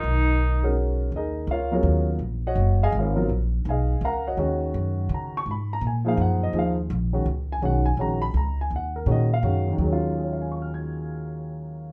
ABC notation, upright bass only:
X:1
M:3/4
L:1/8
Q:"Swing" 1/4=166
K:Ebm
V:1 name="Upright bass" clef=bass
C,,6 | E,,2 D,,2 E,,2 | B,,,2 G,,,2 A,,,2 | B,,,2 C,,2 D,,2 |
E,,2 G,,2 D,2 | A,,2 B,,2 G,,2 | E,,2 B,,,2 D,,2 | C,,2 B,,,2 D,,2 |
E,,2 B,,2 G,,2 | E,,6- | E,,6 |]